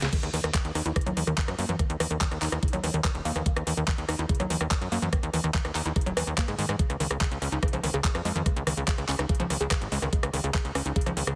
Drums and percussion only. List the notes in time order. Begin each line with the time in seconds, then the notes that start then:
0.02 snare, closed hi-hat
0.13 kick, closed hi-hat, crash
0.23 cross-stick, closed hi-hat
0.34 open hi-hat
0.44 cross-stick, closed hi-hat
0.54 kick, clap, closed hi-hat
0.65 closed hi-hat
0.75 cross-stick, open hi-hat
0.86 closed hi-hat
0.96 kick, cross-stick, closed hi-hat
1.01 closed hi-hat
1.06 closed hi-hat
1.17 open hi-hat
1.27 cross-stick, closed hi-hat
1.38 kick, clap, closed hi-hat
1.48 cross-stick, closed hi-hat
1.59 open hi-hat
1.69 closed hi-hat
1.79 kick, cross-stick, closed hi-hat
1.90 closed hi-hat
2.00 cross-stick, open hi-hat
2.11 closed hi-hat
2.21 kick, clap, closed hi-hat
2.31 cross-stick, closed hi-hat
2.42 clap, open hi-hat
2.52 cross-stick, closed hi-hat
2.63 kick, closed hi-hat
2.68 closed hi-hat
2.73 closed hi-hat
2.84 cross-stick, open hi-hat
2.94 closed hi-hat
3.04 kick, cross-stick, clap, closed hi-hat
3.15 closed hi-hat
3.25 open hi-hat
3.36 cross-stick, closed hi-hat
3.46 kick, closed hi-hat
3.56 cross-stick, closed hi-hat
3.67 open hi-hat
3.77 closed hi-hat
3.88 kick, cross-stick, clap, closed hi-hat
3.98 closed hi-hat
4.09 cross-stick, open hi-hat
4.19 closed hi-hat
4.29 kick, closed hi-hat
4.35 closed hi-hat
4.40 cross-stick, closed hi-hat
4.50 open hi-hat
4.61 cross-stick, closed hi-hat
4.71 kick, clap, closed hi-hat
4.82 closed hi-hat
4.92 cross-stick, open hi-hat
5.02 closed hi-hat
5.13 kick, cross-stick, closed hi-hat
5.23 closed hi-hat
5.34 open hi-hat
5.44 cross-stick, closed hi-hat
5.54 kick, clap, closed hi-hat
5.65 cross-stick, closed hi-hat
5.75 clap, open hi-hat
5.86 closed hi-hat
5.96 kick, cross-stick, closed hi-hat
6.01 closed hi-hat
6.06 closed hi-hat
6.17 cross-stick, open hi-hat
6.38 kick, clap, closed hi-hat
6.48 cross-stick, closed hi-hat
6.59 open hi-hat
6.69 cross-stick
6.79 kick, closed hi-hat
6.90 cross-stick, closed hi-hat
7.00 open hi-hat
7.11 cross-stick, closed hi-hat
7.21 kick, clap, closed hi-hat
7.31 closed hi-hat
7.42 cross-stick, open hi-hat
7.52 closed hi-hat
7.63 kick, cross-stick, closed hi-hat
7.68 closed hi-hat
7.73 closed hi-hat
7.84 open hi-hat
7.94 cross-stick, closed hi-hat
8.04 kick, clap, closed hi-hat
8.15 cross-stick, closed hi-hat
8.25 open hi-hat
8.36 closed hi-hat
8.46 kick, cross-stick, closed hi-hat
8.56 closed hi-hat
8.67 cross-stick, open hi-hat
8.77 closed hi-hat
8.88 kick, clap, closed hi-hat
8.98 cross-stick, closed hi-hat
9.09 clap, open hi-hat
9.19 cross-stick, closed hi-hat
9.29 kick, closed hi-hat
9.35 closed hi-hat
9.40 closed hi-hat
9.50 cross-stick, open hi-hat
9.61 closed hi-hat
9.71 kick, cross-stick, clap, closed hi-hat
9.81 closed hi-hat
9.92 open hi-hat
10.02 cross-stick, closed hi-hat
10.13 kick, closed hi-hat
10.23 cross-stick, closed hi-hat
10.34 open hi-hat
10.44 closed hi-hat
10.54 kick, cross-stick, clap, closed hi-hat
10.65 closed hi-hat
10.75 cross-stick, open hi-hat
10.86 closed hi-hat
10.96 kick, closed hi-hat
11.01 closed hi-hat
11.06 cross-stick, closed hi-hat
11.17 open hi-hat
11.27 cross-stick, closed hi-hat